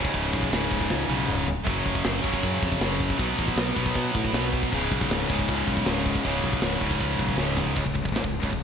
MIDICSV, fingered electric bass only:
0, 0, Header, 1, 2, 480
1, 0, Start_track
1, 0, Tempo, 380952
1, 176, Time_signature, 4, 2, 24, 8
1, 10875, End_track
2, 0, Start_track
2, 0, Title_t, "Fingered electric bass"
2, 0, Program_c, 0, 33
2, 180, Note_on_c, 0, 25, 99
2, 367, Note_off_c, 0, 25, 0
2, 423, Note_on_c, 0, 35, 96
2, 608, Note_off_c, 0, 35, 0
2, 662, Note_on_c, 0, 25, 99
2, 848, Note_off_c, 0, 25, 0
2, 898, Note_on_c, 0, 25, 84
2, 1086, Note_off_c, 0, 25, 0
2, 1141, Note_on_c, 0, 37, 89
2, 1328, Note_off_c, 0, 37, 0
2, 1369, Note_on_c, 0, 35, 86
2, 1561, Note_off_c, 0, 35, 0
2, 1633, Note_on_c, 0, 25, 84
2, 2003, Note_off_c, 0, 25, 0
2, 2111, Note_on_c, 0, 30, 88
2, 2294, Note_off_c, 0, 30, 0
2, 2344, Note_on_c, 0, 29, 98
2, 2530, Note_off_c, 0, 29, 0
2, 2588, Note_on_c, 0, 30, 97
2, 2773, Note_off_c, 0, 30, 0
2, 2821, Note_on_c, 0, 30, 87
2, 3009, Note_off_c, 0, 30, 0
2, 3073, Note_on_c, 0, 42, 93
2, 3255, Note_off_c, 0, 42, 0
2, 3305, Note_on_c, 0, 41, 88
2, 3490, Note_off_c, 0, 41, 0
2, 3537, Note_on_c, 0, 30, 84
2, 3913, Note_off_c, 0, 30, 0
2, 4021, Note_on_c, 0, 35, 100
2, 4208, Note_off_c, 0, 35, 0
2, 4271, Note_on_c, 0, 33, 101
2, 4454, Note_off_c, 0, 33, 0
2, 4490, Note_on_c, 0, 35, 93
2, 4682, Note_off_c, 0, 35, 0
2, 4746, Note_on_c, 0, 35, 86
2, 4931, Note_off_c, 0, 35, 0
2, 4986, Note_on_c, 0, 47, 100
2, 5171, Note_off_c, 0, 47, 0
2, 5237, Note_on_c, 0, 45, 90
2, 5418, Note_off_c, 0, 45, 0
2, 5458, Note_on_c, 0, 35, 94
2, 5834, Note_off_c, 0, 35, 0
2, 5960, Note_on_c, 0, 25, 91
2, 6139, Note_off_c, 0, 25, 0
2, 6192, Note_on_c, 0, 35, 102
2, 6374, Note_off_c, 0, 35, 0
2, 6421, Note_on_c, 0, 25, 100
2, 6607, Note_off_c, 0, 25, 0
2, 6683, Note_on_c, 0, 25, 83
2, 6860, Note_off_c, 0, 25, 0
2, 6914, Note_on_c, 0, 37, 95
2, 7095, Note_off_c, 0, 37, 0
2, 7150, Note_on_c, 0, 35, 89
2, 7332, Note_off_c, 0, 35, 0
2, 7389, Note_on_c, 0, 25, 91
2, 7759, Note_off_c, 0, 25, 0
2, 7877, Note_on_c, 0, 25, 98
2, 8056, Note_off_c, 0, 25, 0
2, 8115, Note_on_c, 0, 35, 95
2, 8295, Note_off_c, 0, 35, 0
2, 8336, Note_on_c, 0, 25, 94
2, 8523, Note_off_c, 0, 25, 0
2, 8586, Note_on_c, 0, 25, 86
2, 8770, Note_off_c, 0, 25, 0
2, 8827, Note_on_c, 0, 37, 97
2, 9010, Note_off_c, 0, 37, 0
2, 9063, Note_on_c, 0, 35, 90
2, 9247, Note_off_c, 0, 35, 0
2, 9292, Note_on_c, 0, 25, 93
2, 9669, Note_off_c, 0, 25, 0
2, 9782, Note_on_c, 0, 25, 90
2, 9890, Note_off_c, 0, 25, 0
2, 9908, Note_on_c, 0, 25, 83
2, 10013, Note_off_c, 0, 25, 0
2, 10029, Note_on_c, 0, 25, 79
2, 10134, Note_off_c, 0, 25, 0
2, 10150, Note_on_c, 0, 25, 69
2, 10221, Note_off_c, 0, 25, 0
2, 10229, Note_on_c, 0, 32, 100
2, 10353, Note_off_c, 0, 32, 0
2, 10392, Note_on_c, 0, 25, 84
2, 10608, Note_off_c, 0, 25, 0
2, 10632, Note_on_c, 0, 25, 93
2, 10737, Note_off_c, 0, 25, 0
2, 10743, Note_on_c, 0, 25, 73
2, 10875, Note_off_c, 0, 25, 0
2, 10875, End_track
0, 0, End_of_file